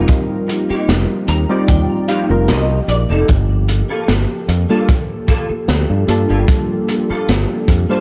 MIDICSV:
0, 0, Header, 1, 8, 480
1, 0, Start_track
1, 0, Key_signature, -2, "minor"
1, 0, Tempo, 800000
1, 52, Time_signature, 4, 2, 24, 8
1, 4802, End_track
2, 0, Start_track
2, 0, Title_t, "Clean electric guitar"
2, 0, Program_c, 0, 27
2, 415, Note_on_c, 0, 58, 78
2, 421, Note_on_c, 0, 63, 66
2, 421, Note_on_c, 0, 67, 89
2, 530, Note_off_c, 0, 58, 0
2, 531, Note_off_c, 0, 63, 0
2, 532, Note_off_c, 0, 67, 0
2, 773, Note_on_c, 0, 82, 70
2, 898, Note_on_c, 0, 58, 76
2, 902, Note_on_c, 0, 63, 64
2, 903, Note_on_c, 0, 67, 86
2, 995, Note_off_c, 0, 82, 0
2, 1010, Note_on_c, 0, 79, 75
2, 1011, Note_off_c, 0, 58, 0
2, 1011, Note_off_c, 0, 63, 0
2, 1013, Note_off_c, 0, 67, 0
2, 1234, Note_off_c, 0, 79, 0
2, 1249, Note_on_c, 0, 77, 74
2, 1251, Note_on_c, 0, 63, 78
2, 1252, Note_on_c, 0, 67, 96
2, 1253, Note_on_c, 0, 58, 72
2, 1379, Note_off_c, 0, 58, 0
2, 1380, Note_off_c, 0, 63, 0
2, 1380, Note_off_c, 0, 67, 0
2, 1474, Note_off_c, 0, 77, 0
2, 1490, Note_on_c, 0, 75, 74
2, 1714, Note_off_c, 0, 75, 0
2, 1734, Note_on_c, 0, 74, 68
2, 1858, Note_on_c, 0, 58, 73
2, 1862, Note_on_c, 0, 69, 85
2, 1863, Note_on_c, 0, 63, 65
2, 1955, Note_off_c, 0, 74, 0
2, 1971, Note_off_c, 0, 58, 0
2, 1972, Note_off_c, 0, 63, 0
2, 1972, Note_off_c, 0, 69, 0
2, 2337, Note_on_c, 0, 58, 76
2, 2341, Note_on_c, 0, 69, 87
2, 2342, Note_on_c, 0, 65, 65
2, 2450, Note_off_c, 0, 58, 0
2, 2451, Note_off_c, 0, 65, 0
2, 2452, Note_off_c, 0, 69, 0
2, 2817, Note_on_c, 0, 58, 80
2, 2821, Note_on_c, 0, 65, 68
2, 2822, Note_on_c, 0, 69, 87
2, 2930, Note_off_c, 0, 58, 0
2, 2931, Note_off_c, 0, 65, 0
2, 2932, Note_off_c, 0, 69, 0
2, 3168, Note_on_c, 0, 58, 88
2, 3172, Note_on_c, 0, 65, 74
2, 3173, Note_on_c, 0, 69, 93
2, 3299, Note_off_c, 0, 58, 0
2, 3300, Note_off_c, 0, 65, 0
2, 3301, Note_off_c, 0, 69, 0
2, 3778, Note_on_c, 0, 58, 74
2, 3782, Note_on_c, 0, 65, 60
2, 3783, Note_on_c, 0, 67, 82
2, 3891, Note_off_c, 0, 58, 0
2, 3892, Note_off_c, 0, 65, 0
2, 3893, Note_off_c, 0, 67, 0
2, 4259, Note_on_c, 0, 58, 81
2, 4263, Note_on_c, 0, 65, 59
2, 4263, Note_on_c, 0, 69, 86
2, 4371, Note_off_c, 0, 58, 0
2, 4372, Note_off_c, 0, 65, 0
2, 4373, Note_off_c, 0, 69, 0
2, 4739, Note_on_c, 0, 58, 74
2, 4744, Note_on_c, 0, 65, 60
2, 4744, Note_on_c, 0, 69, 88
2, 4802, Note_off_c, 0, 58, 0
2, 4802, Note_off_c, 0, 65, 0
2, 4802, Note_off_c, 0, 69, 0
2, 4802, End_track
3, 0, Start_track
3, 0, Title_t, "Ambient pad"
3, 0, Program_c, 1, 92
3, 0, Note_on_c, 1, 53, 82
3, 0, Note_on_c, 1, 58, 74
3, 0, Note_on_c, 1, 63, 72
3, 0, Note_on_c, 1, 67, 89
3, 1949, Note_off_c, 1, 63, 0
3, 1975, Note_on_c, 1, 69, 74
3, 4802, Note_off_c, 1, 53, 0
3, 4802, Note_off_c, 1, 58, 0
3, 4802, Note_off_c, 1, 67, 0
3, 4802, Note_off_c, 1, 69, 0
3, 4802, End_track
4, 0, Start_track
4, 0, Title_t, "Synth keys"
4, 0, Program_c, 2, 88
4, 0, Note_on_c, 2, 55, 84
4, 0, Note_on_c, 2, 60, 77
4, 0, Note_on_c, 2, 63, 77
4, 0, Note_on_c, 2, 65, 76
4, 0, Note_on_c, 2, 70, 91
4, 863, Note_off_c, 2, 55, 0
4, 866, Note_off_c, 2, 60, 0
4, 868, Note_off_c, 2, 63, 0
4, 870, Note_off_c, 2, 65, 0
4, 873, Note_off_c, 2, 70, 0
4, 893, Note_on_c, 2, 55, 83
4, 895, Note_on_c, 2, 60, 76
4, 897, Note_on_c, 2, 63, 77
4, 900, Note_on_c, 2, 65, 76
4, 903, Note_on_c, 2, 74, 93
4, 1346, Note_off_c, 2, 55, 0
4, 1347, Note_off_c, 2, 60, 0
4, 1348, Note_off_c, 2, 63, 0
4, 1349, Note_off_c, 2, 65, 0
4, 1351, Note_off_c, 2, 74, 0
4, 1374, Note_on_c, 2, 55, 74
4, 1377, Note_on_c, 2, 60, 71
4, 1378, Note_on_c, 2, 63, 70
4, 1381, Note_on_c, 2, 65, 70
4, 1384, Note_on_c, 2, 70, 86
4, 1588, Note_off_c, 2, 55, 0
4, 1589, Note_off_c, 2, 60, 0
4, 1590, Note_off_c, 2, 63, 0
4, 1592, Note_off_c, 2, 65, 0
4, 1593, Note_off_c, 2, 70, 0
4, 2814, Note_on_c, 2, 55, 89
4, 2816, Note_on_c, 2, 58, 81
4, 2818, Note_on_c, 2, 62, 79
4, 2820, Note_on_c, 2, 65, 79
4, 2823, Note_on_c, 2, 69, 97
4, 2942, Note_off_c, 2, 55, 0
4, 2943, Note_off_c, 2, 58, 0
4, 2944, Note_off_c, 2, 62, 0
4, 2946, Note_off_c, 2, 65, 0
4, 2947, Note_off_c, 2, 69, 0
4, 3642, Note_on_c, 2, 55, 84
4, 3648, Note_on_c, 2, 58, 77
4, 3653, Note_on_c, 2, 62, 78
4, 3657, Note_on_c, 2, 65, 77
4, 3661, Note_on_c, 2, 69, 94
4, 4705, Note_off_c, 2, 55, 0
4, 4708, Note_off_c, 2, 58, 0
4, 4710, Note_off_c, 2, 62, 0
4, 4712, Note_off_c, 2, 65, 0
4, 4714, Note_off_c, 2, 69, 0
4, 4735, Note_on_c, 2, 55, 83
4, 4738, Note_on_c, 2, 58, 77
4, 4741, Note_on_c, 2, 62, 76
4, 4743, Note_on_c, 2, 65, 77
4, 4744, Note_on_c, 2, 72, 92
4, 4802, Note_off_c, 2, 55, 0
4, 4802, Note_off_c, 2, 58, 0
4, 4802, Note_off_c, 2, 62, 0
4, 4802, Note_off_c, 2, 65, 0
4, 4802, Note_off_c, 2, 72, 0
4, 4802, End_track
5, 0, Start_track
5, 0, Title_t, "Fingered electric bass"
5, 0, Program_c, 3, 33
5, 529, Note_on_c, 3, 29, 93
5, 627, Note_off_c, 3, 29, 0
5, 769, Note_on_c, 3, 39, 101
5, 866, Note_off_c, 3, 39, 0
5, 1011, Note_on_c, 3, 39, 81
5, 1107, Note_off_c, 3, 39, 0
5, 1379, Note_on_c, 3, 29, 84
5, 1487, Note_on_c, 3, 36, 92
5, 1496, Note_off_c, 3, 29, 0
5, 1673, Note_off_c, 3, 36, 0
5, 1728, Note_on_c, 3, 34, 89
5, 1826, Note_off_c, 3, 34, 0
5, 1858, Note_on_c, 3, 29, 90
5, 1942, Note_off_c, 3, 29, 0
5, 1974, Note_on_c, 3, 31, 97
5, 2289, Note_off_c, 3, 31, 0
5, 2451, Note_on_c, 3, 31, 95
5, 2547, Note_off_c, 3, 31, 0
5, 2690, Note_on_c, 3, 41, 100
5, 2787, Note_off_c, 3, 41, 0
5, 3409, Note_on_c, 3, 38, 89
5, 3506, Note_off_c, 3, 38, 0
5, 3539, Note_on_c, 3, 43, 88
5, 3623, Note_off_c, 3, 43, 0
5, 3650, Note_on_c, 3, 43, 90
5, 3747, Note_off_c, 3, 43, 0
5, 3780, Note_on_c, 3, 31, 100
5, 3863, Note_off_c, 3, 31, 0
5, 4372, Note_on_c, 3, 31, 96
5, 4468, Note_off_c, 3, 31, 0
5, 4608, Note_on_c, 3, 41, 98
5, 4706, Note_off_c, 3, 41, 0
5, 4802, End_track
6, 0, Start_track
6, 0, Title_t, "Muted clean electric guitar strokes"
6, 289, Note_on_c, 9, 29, 84
6, 349, Note_off_c, 9, 29, 0
6, 769, Note_on_c, 9, 29, 84
6, 829, Note_off_c, 9, 29, 0
6, 1730, Note_on_c, 9, 29, 85
6, 1790, Note_off_c, 9, 29, 0
6, 2210, Note_on_c, 9, 29, 86
6, 2270, Note_off_c, 9, 29, 0
6, 2690, Note_on_c, 9, 29, 85
6, 2750, Note_off_c, 9, 29, 0
6, 3651, Note_on_c, 9, 29, 86
6, 3711, Note_off_c, 9, 29, 0
6, 4131, Note_on_c, 9, 29, 83
6, 4191, Note_off_c, 9, 29, 0
6, 4611, Note_on_c, 9, 29, 83
6, 4671, Note_off_c, 9, 29, 0
6, 4802, End_track
7, 0, Start_track
7, 0, Title_t, "Muted fingered electric bass strokes"
7, 419, Note_on_c, 9, 29, 42
7, 479, Note_off_c, 9, 29, 0
7, 3298, Note_on_c, 9, 29, 42
7, 3358, Note_off_c, 9, 29, 0
7, 4261, Note_on_c, 9, 29, 42
7, 4321, Note_off_c, 9, 29, 0
7, 4802, End_track
8, 0, Start_track
8, 0, Title_t, "Drums"
8, 48, Note_on_c, 9, 42, 83
8, 52, Note_on_c, 9, 36, 105
8, 108, Note_off_c, 9, 42, 0
8, 112, Note_off_c, 9, 36, 0
8, 296, Note_on_c, 9, 42, 78
8, 356, Note_off_c, 9, 42, 0
8, 534, Note_on_c, 9, 38, 126
8, 535, Note_on_c, 9, 42, 89
8, 594, Note_off_c, 9, 38, 0
8, 595, Note_off_c, 9, 42, 0
8, 769, Note_on_c, 9, 42, 76
8, 829, Note_off_c, 9, 42, 0
8, 1010, Note_on_c, 9, 42, 82
8, 1011, Note_on_c, 9, 36, 112
8, 1070, Note_off_c, 9, 42, 0
8, 1071, Note_off_c, 9, 36, 0
8, 1251, Note_on_c, 9, 42, 71
8, 1311, Note_off_c, 9, 42, 0
8, 1490, Note_on_c, 9, 42, 91
8, 1491, Note_on_c, 9, 38, 106
8, 1550, Note_off_c, 9, 42, 0
8, 1551, Note_off_c, 9, 38, 0
8, 1732, Note_on_c, 9, 42, 79
8, 1792, Note_off_c, 9, 42, 0
8, 1970, Note_on_c, 9, 42, 77
8, 1974, Note_on_c, 9, 36, 117
8, 2030, Note_off_c, 9, 42, 0
8, 2034, Note_off_c, 9, 36, 0
8, 2211, Note_on_c, 9, 42, 77
8, 2271, Note_off_c, 9, 42, 0
8, 2450, Note_on_c, 9, 38, 121
8, 2451, Note_on_c, 9, 42, 86
8, 2510, Note_off_c, 9, 38, 0
8, 2511, Note_off_c, 9, 42, 0
8, 2693, Note_on_c, 9, 42, 72
8, 2753, Note_off_c, 9, 42, 0
8, 2932, Note_on_c, 9, 36, 111
8, 2934, Note_on_c, 9, 42, 88
8, 2992, Note_off_c, 9, 36, 0
8, 2994, Note_off_c, 9, 42, 0
8, 3169, Note_on_c, 9, 36, 65
8, 3171, Note_on_c, 9, 42, 74
8, 3229, Note_off_c, 9, 36, 0
8, 3231, Note_off_c, 9, 42, 0
8, 3412, Note_on_c, 9, 38, 108
8, 3412, Note_on_c, 9, 42, 88
8, 3472, Note_off_c, 9, 38, 0
8, 3472, Note_off_c, 9, 42, 0
8, 3651, Note_on_c, 9, 42, 79
8, 3711, Note_off_c, 9, 42, 0
8, 3889, Note_on_c, 9, 36, 123
8, 3892, Note_on_c, 9, 42, 90
8, 3949, Note_off_c, 9, 36, 0
8, 3952, Note_off_c, 9, 42, 0
8, 4131, Note_on_c, 9, 42, 75
8, 4191, Note_off_c, 9, 42, 0
8, 4372, Note_on_c, 9, 42, 86
8, 4376, Note_on_c, 9, 38, 126
8, 4432, Note_off_c, 9, 42, 0
8, 4436, Note_off_c, 9, 38, 0
8, 4609, Note_on_c, 9, 36, 60
8, 4611, Note_on_c, 9, 42, 77
8, 4669, Note_off_c, 9, 36, 0
8, 4671, Note_off_c, 9, 42, 0
8, 4802, End_track
0, 0, End_of_file